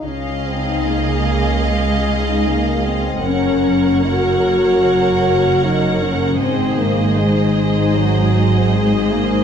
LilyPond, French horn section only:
\new Staff \with { instrumentName = "French horn section" } { \time 4/4 \key des \major \tempo 4 = 77 des'8 c'8 bes4 aes4 bes8 c'8 | des'4 ges'2 ees'8 des'8 | c'8 bes8 aes4 ges4 aes8 bes8 | }